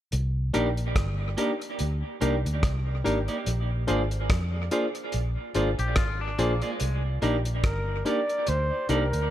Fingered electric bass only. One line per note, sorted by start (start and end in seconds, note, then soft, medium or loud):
0.13 0.51 C2 loud
0.55 0.93 A#1 medium
0.96 1.34 G1 medium
1.80 2.02 D2 medium
2.22 2.43 C2 medium
2.46 2.62 D2 medium
2.63 3.01 C2 medium
3.05 3.27 G#1 medium
3.47 3.85 A#1 medium
3.89 4.27 G#1 medium
4.30 4.68 F2 loud
5.14 5.36 A#1 medium
5.55 5.77 G#1 medium
5.79 5.97 A#1 medium
5.97 6.35 G#1 medium
6.39 6.60 A#1 medium
6.81 7.19 C2 medium
7.22 7.61 A#1 medium
7.64 8.02 G1 medium
8.48 8.70 D2 medium
8.89 9.11 C2 medium
9.13 9.30 D2 medium